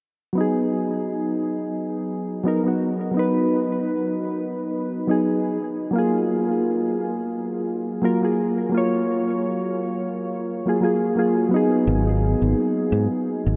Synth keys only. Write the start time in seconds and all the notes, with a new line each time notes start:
0.33 F#3 B3
0.38 D#4 G#4
2.44 F#3 B3 D#4
2.48 A#4
2.64 F#3 B3 D#4
2.68 F#4
3.11 F#3 B3
3.17 D#4 B4
5.07 F#3 B3 D#4 G#4
5.91 F#3 A#3
5.96 F4 G#4
8.02 F#3 A#3 F4 A#4
8.21 F#3 A#3 F4 G#4
8.69 F#3 A#3
8.74 F4 C#5
10.66 F#3 A#3 F4 G#4
10.81 F#3 A#3 F4 G#4
11.16 F#3 A#3 F4 G#4
11.49 F#3 B3
11.54 D#4 G#4